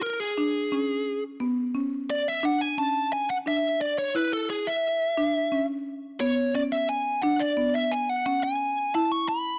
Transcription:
<<
  \new Staff \with { instrumentName = "Lead electric guitar" } { \time 7/8 \key b \dorian \tempo 4 = 88 ais'16 gis'4. r4 r16 d''16 e''16 | fis''16 gis''16 a''8 gis''16 fis''16 e''8 d''16 cis''16 b'16 a'16 gis'16 e''16~ | e''4~ e''16 r8. cis''8 d''16 e''16 gis''8 | fis''16 d''8 e''16 gis''16 fis''16 fis''16 gis''8. a''16 cis'''16 b''8 | }
  \new Staff \with { instrumentName = "Marimba" } { \time 7/8 \key b \dorian r8 d'8 cis'4 b8 cis'4 | d'8 cis'4 d'4 e'4 | r8 d'8 cis'4 b8 cis'4 | d'8 b4 cis'4 e'4 | }
>>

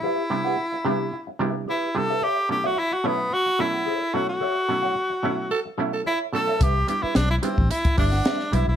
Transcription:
<<
  \new Staff \with { instrumentName = "Clean electric guitar" } { \time 4/4 \key b \dorian \tempo 4 = 110 <g' b' e''>16 r8 <g' b' fis''>16 r8 <g' b' e''>16 r8. <g' b' e''>16 r16 <g' b' e''>16 r8 <g' b' e''>16 | <a' cis'' e''>16 r8 <a' cis'' e''>16 r8 <a' cis'' e''>16 r8. <a' cis'' e''>16 <a' cis'' fis''>16 <a' cis'' e''>16 r16 <a' cis'' e''>16 r16 | <a' cis'' e''>16 r8 <a' cis'' fis''>16 r8 <a' cis'' e''>16 r8. <a' cis'' e''>16 r16 <a' cis'' e''>16 r8 <a' cis'' e''>16 | <g' b' e''>16 r8 <g' b' e''>16 r8 <g' b' e''>16 r8. <g' b' e''>16 <g' b' fis''>16 <g' b' e''>16 r16 <g' b' e''>16 r16 | }
  \new Staff \with { instrumentName = "Tenor saxophone" } { \time 4/4 \key b \dorian r1 | r1 | r2 a'16 r8 a'16 r8 a'8~ | a'16 r2. r8. | }
  \new Staff \with { instrumentName = "Tenor saxophone" } { \time 4/4 \key b \dorian e'2~ e'16 r8. e'8 a'8 | g'8 g'16 fis'16 e'16 fis'16 b8 fis'8 e'4 fis'16 fis'16~ | fis'2~ fis'16 r8. e'8 a'8 | g'8 g'16 e'16 d'16 e'16 c'8 e'8 d'4 e'16 e'16 | }
  \new Staff \with { instrumentName = "Clav" } { \time 4/4 \key b \dorian r8 <c g b d' e'>8 r8 <c g b d' e'>8 r8 <c g b d' e'>8 r8 <c g b d' e'>8 | r8 <b, fis a cis' e'>8 r8 <b, fis a cis' e'>8 r8 <b, fis a cis' e'>8 r8 <b, fis a cis' e'>8 | r8 <b, fis a cis' e'>8 r8 <b, fis a cis' e'>8 r8 <b, fis a cis' e'>8 r8 <b, fis a cis' e'>8 | r8 <g b d' e'>8 r8 <g b d' e'>8 r8 <g b d' e'>8 r8 <g b d' e'>8 | }
  \new Staff \with { instrumentName = "Fingered electric bass" } { \clef bass \time 4/4 \key b \dorian r1 | r1 | r1 | c,8 r8 b,,8 r16 a,,16 r8 g,,8 r8 b,,16 b,,16 | }
  \new DrumStaff \with { instrumentName = "Drums" } \drummode { \time 4/4 r4 r4 r4 r4 | r4 r4 r4 r4 | r4 r4 r4 r4 | <hh bd>8 hh8 <hh sn>8 hh16 bd16 hh16 <hh bd>16 <hho bd>16 sn16 <hh sn>16 sn16 hh8 | }
>>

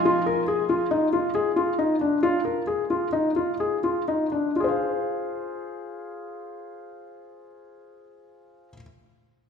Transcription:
\new Staff \with { instrumentName = "Felt piano" } { \time 5/4 \key f \dorian \tempo 4 = 121 f'8 bes'8 aes'8 f'8 ees'8 f'8 aes'8 f'8 ees'8 d'8 | f'8 bes'8 aes'8 f'8 ees'8 f'8 aes'8 f'8 ees'8 d'8 | <f' aes' c'' f''>1~ <f' aes' c'' f''>4~ | <f' aes' c'' f''>1~ <f' aes' c'' f''>4 | }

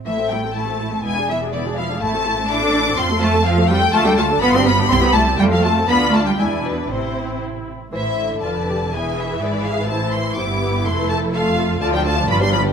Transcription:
<<
  \new Staff \with { instrumentName = "Violin section" } { \time 2/4 \key a \minor \tempo 4 = 124 e''8 g''8 a''4 | gis''8 e''8 d''8 f''8 | a''4 d'''4 | c'''8 a''8 f''8 g''8 |
a''16 g''16 a''8 b''16 c'''16 b''8 | c'''16 b''16 a''8 g''16 f''16 a''8 | b''8 a''16 g''16 gis''8 b'8 | c''4 r4 |
e''4 a''4 | gis''8 e''8 d''8 f''8 | a''8 c'''8 d'''4 | c'''8 a''8 f''4 |
a''16 g''16 a''8 b''16 c'''16 b''8 | }
  \new Staff \with { instrumentName = "Violin section" } { \time 2/4 \key a \minor << { e''8 g''8 a''4 | gis''8 e''8 d''8 f''8 | a''4 d'''4 | c'''8 a''8 f''8 g''8 |
a''16 g''16 a''8 b''16 c'''16 b''8 | c'''16 b''16 a''8 g''16 f''16 a''8 | b''8 a''16 g''16 gis''8 b'8 | c''4 r4 |
c''4 d''4 | e''2 | c''4 c''8 b'8~ | b'4 a'4 |
d''16 f''16 d''16 f''16 d''16 b'16 d''16 b'16 | } \\ { r2 | r2 | r2 | r2 |
r2 | r2 | r2 | r2 |
c''4 b'4 | b'2 | c''4 g'4 | a'4 a'4 |
f'16 a'16 f'16 a'16 b'16 g'16 b'16 g'16 | } >> }
  \new Staff \with { instrumentName = "Viola section" } { \time 2/4 \key a \minor << { e'16 a'16 e'16 a'16 e'16 a'16 e'16 a'16 | e'16 gis'16 e'16 gis'16 e'16 gis'16 e'16 gis'16 | e'16 a'16 e'16 a'16 e'16 a'16 e'16 a'16 | f'16 a'16 f'16 a'16 f'16 a'16 f'16 a'16 |
f'16 a'16 f'16 a'16 f'16 g'16 f'16 g'16 | e'16 g'16 e'16 g'16 f'16 a'16 f'16 a'16 | f'4 e'4 | e'4. r8 |
e'4 f'8 g'8 | gis'4 gis'4 | e'4 e'4~ | e'4 f'4 |
f'16 d'16 f'16 d'16 f'16 d'16 f'16 d'16 | } \\ { a16 c'16 a16 c'16 a16 c'16 a16 c'16 | b16 d'16 b16 d'16 b16 d'16 b16 d'16 | a16 c'16 a16 c'16 a16 c'16 a16 c'16 | c'16 a16 c'16 a16 c'16 a16 c'16 a16 |
a16 d'16 a16 d'16 b16 d'16 b16 d'16 | g16 c'16 g16 c'16 a16 c'16 a16 c'16 | d'4 d'4 | c'4. r8 |
e8 d4. | e2 | e4 b4 | a4 a4 |
d16 f16 d16 f16 f16 g16 f16 g16 | } >> }
  \new Staff \with { instrumentName = "Cello section" } { \clef bass \time 2/4 \key a \minor e8 g8 a4 | gis8 e8 d8 f8 | a4 d'4 | c'8 a8 f8 g8 |
a16 g16 a8 b16 c'16 b8 | c'16 b16 a8 g16 f16 a8 | b8 a16 g16 gis8 b,8 | c4 r4 |
a,4 f,4 | e,4 gis,4 | a,4 g,4 | f,2 |
d,4 g,4 | }
  \new Staff \with { instrumentName = "Double bass section" } { \clef bass \time 2/4 \key a \minor a,,2 | e,,2 | a,,2 | f,2 |
d,4 g,,4 | c,4 f,4 | d,4 e,4 | a,,4. r8 |
a,,4 f,,4 | e,,4 gis,,4 | a,,4 g,,4 | f,,2 |
d,4 g,,4 | }
>>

